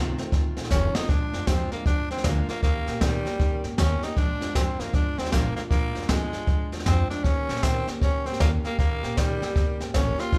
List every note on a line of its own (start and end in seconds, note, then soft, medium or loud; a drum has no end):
0.00 0.13 C2 medium
0.00 0.18 F2 medium
0.00 0.19 C3 loud
0.00 0.19 D#3 medium
0.00 0.19 A3 loud
0.00 0.18 C4 loud
0.00 0.16 F4 loud
0.18 0.29 D#2 medium
0.18 0.31 D#3 medium
0.18 0.32 A3 medium
0.18 0.33 C4 medium
0.18 0.32 F4 medium
0.18 snare soft
0.32 0.51 D2 loud
0.32 0.57 D#3 medium
0.32 0.57 A3 medium
0.32 0.57 C4 medium
0.32 0.56 F4 medium
0.32 kick loud
0.32 snare soft
0.57 0.68 A#1 loud
0.57 0.70 D#3 soft
0.57 0.71 A3 medium
0.57 0.71 C4 medium
0.57 0.71 F4 medium
0.57 snare soft
0.64 snare soft
0.70 0.89 F1 medium
0.70 0.95 F2 medium
0.70 0.95 C3 medium
0.70 0.96 D#3 medium
0.70 0.96 A3 medium
0.70 0.95 C4 medium
0.70 0.97 C#4 loud
0.70 0.93 F4 medium
0.70 kick medium
0.70 snare medium
0.70 hi-hat pedal medium
0.95 1.09 D#3 soft
0.95 1.09 A3 medium
0.95 1.09 C4 medium
0.95 1.11 D#4 medium
0.95 1.09 F4 medium
0.95 muted upright bass stroke medium
0.95 snare medium
1.09 1.28 A#1 medium
1.09 1.33 A#2 medium
1.09 1.34 F3 medium
1.09 1.34 G#3 medium
1.09 1.48 D4 medium
1.09 1.34 D4 medium
1.09 1.32 F4 medium
1.09 kick loud
1.09 snare soft
1.33 1.44 F2 medium
1.33 1.48 G#3 soft
1.33 1.48 D4 medium
1.33 1.47 F4 medium
1.33 snare soft
1.47 1.66 F2 medium
1.47 1.72 A#2 medium
1.47 1.72 F3 medium
1.47 1.73 G#3 medium
1.47 1.72 C4 medium
1.47 1.72 D4 medium
1.47 1.70 F4 medium
1.47 kick medium
1.47 snare loud
1.47 hi-hat pedal medium
1.72 1.83 G#2 loud
1.72 1.86 G#3 soft
1.72 1.85 A#3 medium
1.72 1.86 D4 soft
1.72 1.86 F4 medium
1.72 snare soft
1.86 2.05 G2 loud
1.86 2.10 F3 medium
1.86 2.11 G#3 medium
1.86 2.09 D4 medium
1.86 2.11 D4 medium
1.86 2.09 F4 medium
1.86 kick loud
1.86 snare soft
2.10 2.21 D#2 medium
2.10 2.25 G#3 soft
2.10 2.24 C4 medium
2.10 2.25 D4 medium
2.10 2.24 F4 medium
2.10 snare soft
2.17 snare soft
2.24 2.43 D2 medium
2.24 2.49 A#2 medium
2.24 2.49 F3 medium
2.24 2.50 G#3 medium
2.24 2.47 A#3 medium
2.24 2.49 D4 medium
2.24 2.47 F4 medium
2.24 kick medium
2.24 snare loud
2.24 hi-hat pedal medium
2.49 2.63 G#3 soft
2.49 2.62 A#3 medium
2.49 2.64 D4 soft
2.49 2.63 F4 medium
2.49 muted upright bass stroke medium
2.49 snare soft
2.62 2.82 D#2 loud
2.62 2.87 D#3 medium
2.62 3.03 A#3 loud
2.62 2.87 A#3 medium
2.62 2.87 C#4 medium
2.62 2.85 G4 medium
2.62 kick loud
2.62 snare soft
2.86 2.98 A#2 loud
2.86 3.00 A#3 soft
2.86 3.01 C#4 medium
2.86 3.01 G4 medium
2.86 snare soft
3.00 3.20 A#2 loud
3.00 3.25 D#3 medium
3.00 3.64 G3 loud
3.00 3.26 A#3 medium
3.00 3.25 C#4 medium
3.00 3.23 G4 medium
3.00 kick medium
3.00 snare loud
3.00 hi-hat pedal medium
3.24 3.36 C#3 loud
3.24 3.38 A#3 medium
3.24 3.39 C#4 medium
3.24 3.39 G4 medium
3.24 snare soft
3.39 3.59 C3 medium
3.39 3.64 D#3 medium
3.39 3.64 A#3 medium
3.39 3.64 C#4 medium
3.39 3.62 G4 medium
3.39 kick loud
3.39 snare soft
3.63 3.75 G#2 medium
3.63 3.77 A#3 medium
3.63 3.77 C#4 medium
3.63 3.78 G4 medium
3.63 snare soft
3.77 3.97 D#2 medium
3.77 4.02 D#3 medium
3.77 4.02 A#3 medium
3.77 4.05 C#4 medium
3.77 4.03 C#4 medium
3.77 4.01 G4 medium
3.77 kick medium
3.77 snare loud
3.77 hi-hat pedal medium
4.02 4.17 A#3 medium
4.02 4.17 C#4 medium
4.02 4.19 D#4 medium
4.02 4.16 G4 medium
4.02 snare soft
4.16 4.36 A#1 loud
4.16 4.41 A#2 medium
4.16 4.41 F3 medium
4.16 4.41 G#3 medium
4.16 4.57 D4 loud
4.16 4.41 D4 medium
4.16 4.39 F4 medium
4.16 kick loud
4.16 snare soft
4.40 4.52 F2 medium
4.40 4.55 G#3 soft
4.40 4.55 D4 medium
4.40 4.55 F4 medium
4.40 snare soft
4.54 4.74 F2 loud
4.54 4.79 A#2 medium
4.54 4.80 F3 medium
4.54 4.80 G#3 medium
4.54 4.81 C4 medium
4.54 4.79 D4 medium
4.54 4.78 F4 medium
4.54 kick medium
4.54 snare loud
4.54 hi-hat pedal medium
4.79 4.91 G#2 medium
4.79 4.93 G#3 soft
4.79 4.94 A#3 medium
4.79 4.94 D4 soft
4.79 4.93 F4 medium
4.79 snare soft
4.93 5.13 G2 loud
4.93 5.18 F3 medium
4.93 5.18 G#3 medium
4.93 5.20 D4 medium
4.93 5.18 D4 soft
4.93 5.17 F4 medium
4.93 kick loud
4.93 snare soft
5.18 5.29 D#2 medium
5.18 5.32 G#3 soft
5.18 5.31 C4 medium
5.18 5.32 D4 soft
5.18 5.32 F4 soft
5.18 snare soft
5.25 snare soft
5.32 5.51 A#1 medium
5.32 5.57 A#2 medium
5.32 5.57 F3 medium
5.32 5.57 G#3 medium
5.32 5.55 A#3 medium
5.32 5.57 D4 medium
5.32 5.55 F4 medium
5.32 kick medium
5.32 snare loud
5.32 hi-hat pedal medium
5.56 5.70 G#3 soft
5.56 5.62 A#3 medium
5.56 5.71 D4 medium
5.56 5.71 F4 medium
5.56 muted upright bass stroke medium
5.56 snare soft
5.70 5.90 A#1 loud
5.70 5.95 A#2 medium
5.70 5.95 F3 medium
5.70 5.95 G#3 medium
5.70 6.10 A#3 loud
5.70 5.95 D4 medium
5.70 5.93 F4 medium
5.70 kick loud
5.70 snare soft
5.94 6.06 F2 loud
5.94 6.09 G#3 medium
5.94 6.10 D4 medium
5.94 6.09 F4 medium
5.94 snare soft
6.02 snare soft
6.09 6.28 F2 medium
6.09 6.34 A#2 medium
6.09 6.34 F3 medium
6.09 6.72 G#3 medium
6.09 6.34 G#3 medium
6.09 6.34 D4 medium
6.09 6.32 F4 medium
6.09 kick medium
6.09 snare loud
6.09 hi-hat pedal medium
6.33 6.45 G#2 medium
6.33 6.47 G#3 soft
6.33 6.48 D4 medium
6.33 6.48 F4 medium
6.33 snare soft
6.47 6.67 G2 loud
6.47 6.72 F3 medium
6.47 6.73 G#3 medium
6.47 6.72 D4 medium
6.47 6.71 F4 medium
6.47 kick loud
6.47 snare soft
6.72 6.83 D#2 medium
6.72 6.86 G#3 soft
6.72 6.87 D4 medium
6.72 6.86 F4 medium
6.72 snare soft
6.79 snare soft
6.86 7.05 F2 medium
6.86 7.11 A#2 medium
6.86 7.11 F3 medium
6.86 7.11 G#3 medium
6.86 7.09 C4 loud
6.86 7.11 D4 medium
6.86 7.09 F4 medium
6.86 kick medium
6.86 snare loud
6.86 hi-hat pedal medium
7.10 7.25 G#3 soft
7.10 7.25 D4 medium
7.10 7.25 F4 medium
7.10 muted upright bass stroke medium
7.10 snare soft
7.24 7.44 D#2 medium
7.24 7.49 D#3 medium
7.24 7.50 A#3 medium
7.24 7.64 C#4 loud
7.24 7.49 C#4 medium
7.24 7.47 G4 medium
7.24 kick loud
7.24 snare soft
7.49 7.60 A#2 loud
7.49 7.63 A#3 soft
7.49 7.64 C#4 medium
7.49 7.63 G4 medium
7.49 snare soft
7.56 snare soft
7.63 7.82 A#2 loud
7.63 7.88 D#3 medium
7.63 7.88 A#3 medium
7.63 7.88 C4 loud
7.63 7.87 C#4 medium
7.63 7.86 G4 medium
7.63 kick medium
7.63 snare medium
7.63 hi-hat pedal medium
7.87 7.98 C#3 loud
7.87 8.01 A#3 medium
7.87 8.02 C#4 medium
7.87 8.01 G4 medium
7.87 snare soft
8.01 8.21 C3 medium
8.01 8.26 D#3 medium
8.01 8.26 A#3 medium
8.01 8.27 C#4 medium
8.01 8.26 C#4 medium
8.01 8.24 G4 medium
8.01 kick loud
8.01 snare soft
8.25 8.37 G#2 medium
8.25 8.39 A#3 soft
8.25 8.40 C4 medium
8.25 8.40 C#4 soft
8.25 8.40 G4 soft
8.25 snare soft
8.33 snare soft
8.40 8.59 D#2 medium
8.40 8.64 D#3 medium
8.40 8.65 A#3 medium
8.40 8.51 A#3 medium
8.40 8.65 C#4 medium
8.40 8.63 G4 medium
8.40 kick medium
8.40 snare loud
8.40 hi-hat pedal medium
8.64 8.78 A#3 medium
8.64 8.79 C#4 medium
8.64 8.79 G4 medium
8.64 muted upright bass stroke medium
8.64 snare soft
8.78 8.98 D#2 medium
8.78 9.03 D#3 medium
8.78 9.19 A#3 loud
8.78 9.03 A#3 medium
8.78 9.04 C#4 medium
8.78 9.02 G4 medium
8.78 kick loud
8.78 snare soft
9.03 9.14 A#2 medium
9.03 9.16 A#3 soft
9.03 9.17 C#4 medium
9.03 9.17 G4 medium
9.03 snare soft
9.17 9.36 A#2 loud
9.17 9.41 D#3 medium
9.17 9.80 G3 loud
9.17 9.42 A#3 medium
9.17 9.42 C#4 medium
9.17 9.40 G4 medium
9.17 kick medium
9.17 snare medium
9.17 hi-hat pedal medium
9.41 9.53 C#3 medium
9.41 9.55 A#3 soft
9.41 9.56 C#4 medium
9.41 9.56 G4 medium
9.41 snare soft
9.55 9.75 C3 loud
9.55 9.80 D#3 medium
9.55 9.80 A#3 medium
9.55 9.80 C#4 medium
9.55 9.79 G4 medium
9.55 kick loud
9.55 snare soft
9.80 9.91 G#2 medium
9.80 9.94 A#3 soft
9.80 9.94 C#4 medium
9.80 9.94 G4 medium
9.80 snare soft
9.94 10.13 A1 medium
9.94 10.18 D#3 medium
9.94 10.19 A#3 medium
9.94 10.21 C#4 loud
9.94 10.18 C#4 medium
9.94 10.16 G4 medium
9.94 kick medium
9.94 snare loud
9.94 hi-hat pedal medium
10.18 10.33 A#3 medium
10.18 10.33 C#4 medium
10.18 10.38 F4 loud
10.18 10.32 G4 medium
10.18 snare soft
10.32 10.38 A#1 medium
10.32 10.38 A#2 medium
10.32 10.38 F3 medium
10.32 10.38 G#3 medium
10.32 10.38 D4 medium
10.32 10.38 F4 medium
10.32 kick loud
10.32 snare soft